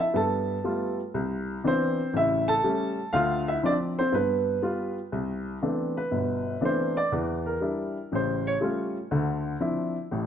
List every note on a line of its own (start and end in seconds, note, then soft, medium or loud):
0.00 0.14 E4 medium
0.00 0.16 E5 medium
0.14 0.57 G2 medium
0.14 0.57 B3 medium
0.14 0.94 A4 medium
0.14 0.94 A5 medium
0.64 0.99 G3 medium
0.64 0.99 A3 soft
0.64 0.99 B3 soft
0.64 1.00 F4 medium
1.14 1.57 C2 medium
1.64 1.99 E3 medium
1.64 1.99 B3 soft
1.64 1.66 C4 soft
1.64 2.12 C4 medium
1.64 1.99 D4 medium
1.64 2.12 C5 medium
2.13 2.57 A1 medium
2.13 2.57 C#3 medium
2.13 2.46 E4 medium
2.13 2.46 E5 medium
2.48 3.10 A4 medium
2.48 3.16 A5 loud
2.64 2.98 G3 medium
2.64 2.99 A3 medium
2.64 2.99 C#4 medium
3.13 3.56 D2 medium
3.13 3.56 D3 medium
3.13 3.45 F4 medium
3.13 3.47 F5 medium
3.48 3.64 E4 medium
3.48 3.63 E5 medium
3.63 3.98 F3 medium
3.63 3.98 C4 medium
3.63 3.66 D4 medium
3.63 3.73 D5 medium
3.68 3.75 D4 medium
3.99 4.14 C4 medium
3.99 4.14 C5 medium
4.12 4.56 G2 medium
4.12 4.14 B3 medium
4.12 4.61 B3 medium
4.12 4.92 B4 medium
4.62 4.97 G3 soft
4.62 4.97 B3 soft
4.62 4.98 F4 medium
5.12 5.55 C2 medium
5.62 5.97 E3 soft
5.62 5.97 A3 soft
5.62 5.97 B3 soft
5.62 5.97 C4 soft
5.62 5.97 D4 medium
5.97 6.59 B4 medium
6.11 6.55 G1 medium
6.11 6.55 B2 medium
6.61 6.96 E3 soft
6.61 6.97 A3 soft
6.61 6.96 B3 soft
6.61 6.97 C4 soft
6.61 6.97 D4 medium
6.65 6.96 C5 medium
6.97 7.12 D5 medium
7.12 7.55 E2 medium
7.12 7.55 E3 medium
7.46 8.08 A#4 medium
7.61 7.96 G3 soft
7.61 7.96 D4 soft
7.61 7.97 E4 medium
8.12 8.55 A1 medium
8.12 8.55 C#3 medium
8.12 8.45 C5 medium
8.47 8.56 C#5 medium
8.61 8.96 G3 soft
8.61 8.96 A3 soft
8.61 8.96 C#4 soft
8.61 8.96 F4 medium
9.11 9.54 D2 medium
9.11 9.54 D3 medium
9.60 9.95 F3 medium
9.60 9.95 C4 soft
9.60 9.96 D4 soft
9.60 9.96 E4 medium
10.11 10.26 A1 medium
10.11 10.26 A2 medium